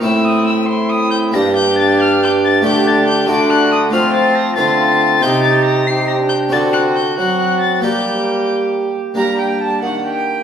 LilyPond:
<<
  \new Staff \with { instrumentName = "Violin" } { \time 6/8 \key g \minor \tempo 4. = 92 e'''8 ees'''8 e'''8 c'''8 ees'''8 g'''8 | bes'''8 g'''8 a'''8 f'''8 g'''8 a'''8 | g'''8 a'''8 g'''8 d'''8 fis'''8 ees'''8 | f'''8 a'''8 bes'''8 a'''4. |
g'''8 a'''8 bes'''8 c''''8 bes'''8 g'''8 | a'''8 fis'''8 g'''8 fis'''8 fis'''8 a'''8 | g'''4. r4. | bes'8 g'8 a'8 fis'8 g'4 | }
  \new Staff \with { instrumentName = "Violin" } { \time 6/8 \key g \minor e'4. e'4. | g'2. | g'4. fis'4. | f'4. f'4. |
g'4. g'4. | fis'4. fis'4. | g'2~ g'8 r8 | bes''8 g''8 a''8 fis''8 g''4 | }
  \new Staff \with { instrumentName = "Trombone" } { \time 6/8 \key g \minor c'4. c'4. | d'2. | d'4. d'4. | c'4. c'4. |
ees'4. ees'8. d'8. | c'4. c'4. | bes2~ bes8 r8 | d'2. | }
  \new Staff \with { instrumentName = "Harpsichord" } { \time 6/8 \key g \minor <a e' c''>2. | <bes g' d''>2. | <a g' d''>4. <a fis' d''>4. | <a f' c''>4. <a f' c''>4. |
<c' g' ees''>2. | <c' fis' d''>2. | <bes g' d''>2. | <bes d' g'>2. | }
  \new Staff \with { instrumentName = "Harpsichord" } { \clef bass \time 6/8 \key g \minor a,2. | g,2. | d4. d4. | f4. d4. |
c2. | d4. fis4. | g2~ g8 r8 | g4. ees4. | }
  \new Staff \with { instrumentName = "Bassoon" } { \clef bass \time 6/8 \key g \minor a,2. | g,2. | d4. d4. | f4. d4. |
c2. | d4. fis4. | g2~ g8 r8 | g4. ees4. | }
>>